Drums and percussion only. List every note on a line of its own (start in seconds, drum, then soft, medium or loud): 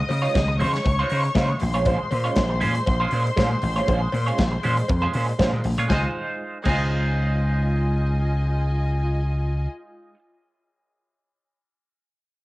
0.09 open hi-hat medium
0.09 cowbell medium
0.09 muted conga medium
0.25 closed hi-hat soft
0.34 kick loud
0.34 snare loud
0.34 closed hi-hat medium
0.34 cowbell medium
0.34 high conga medium
0.60 open hi-hat medium
0.60 low conga medium
0.74 snare soft
0.74 closed hi-hat medium
0.85 kick loud
0.85 closed hi-hat medium
0.85 cowbell medium
0.85 muted conga soft
1.10 open hi-hat medium
1.25 closed hi-hat soft
1.35 kick loud
1.35 snare loud
1.35 closed hi-hat medium
1.35 cowbell medium
1.35 high conga medium
1.60 open hi-hat medium
1.60 high conga medium
1.74 closed hi-hat soft
1.85 kick loud
1.85 closed hi-hat medium
1.85 cowbell medium
1.85 muted conga soft
2.11 open hi-hat medium
2.11 cowbell medium
2.11 muted conga medium
2.26 closed hi-hat soft
2.36 kick loud
2.36 snare loud
2.36 closed hi-hat medium
2.36 cowbell medium
2.36 high conga medium
2.61 open hi-hat medium
2.61 low conga medium
2.75 closed hi-hat medium
2.86 kick loud
2.86 closed hi-hat medium
2.86 cowbell medium
3.11 open hi-hat medium
3.27 closed hi-hat soft
3.37 kick loud
3.37 snare loud
3.37 closed hi-hat medium
3.37 cowbell medium
3.37 high conga medium
3.62 open hi-hat medium
3.62 high conga medium
3.76 closed hi-hat soft
3.88 kick loud
3.88 closed hi-hat medium
3.88 cowbell medium
3.88 muted conga soft
4.12 open hi-hat medium
4.12 cowbell medium
4.12 muted conga medium
4.28 closed hi-hat soft
4.38 kick loud
4.38 snare loud
4.38 closed hi-hat medium
4.38 cowbell medium
4.38 high conga medium
4.63 open hi-hat medium
4.63 low conga medium
4.77 closed hi-hat medium
4.88 kick loud
4.88 closed hi-hat medium
4.88 cowbell medium
4.88 muted conga soft
5.13 open hi-hat medium
5.29 closed hi-hat soft
5.39 kick loud
5.39 snare loud
5.39 closed hi-hat medium
5.39 cowbell medium
5.39 high conga medium
5.64 open hi-hat medium
5.64 high conga medium
5.78 closed hi-hat soft
5.90 kick loud
5.90 snare medium
5.90 cowbell medium
5.90 muted conga medium
6.65 kick loud
6.65 crash medium
6.65 cowbell medium
6.65 muted conga medium